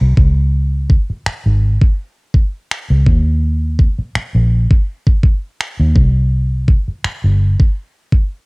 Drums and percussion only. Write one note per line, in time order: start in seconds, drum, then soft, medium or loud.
0.17 kick loud
0.90 kick medium
1.26 finger snap loud
1.81 kick medium
2.34 kick medium
2.71 finger snap loud
3.06 kick loud
3.79 kick medium
4.15 finger snap loud
4.71 kick medium
5.07 kick medium
5.23 kick medium
5.61 finger snap loud
5.96 kick loud
6.68 kick medium
7.04 finger snap loud
7.60 kick medium
8.12 kick medium